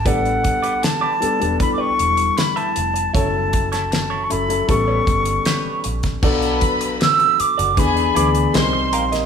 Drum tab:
CC |----------------|----------------|x---------------|
HH |xxxxx-xxx-xxxxxx|x-xxx-xxx-xxx-xx|-xxxxxxxxxxxx-xx|
SD |----o-------o---|---oo-------o--o|----o-------o--o|
BD |o-o-----o-------|o-o-----o-o----o|o-o-----o-------|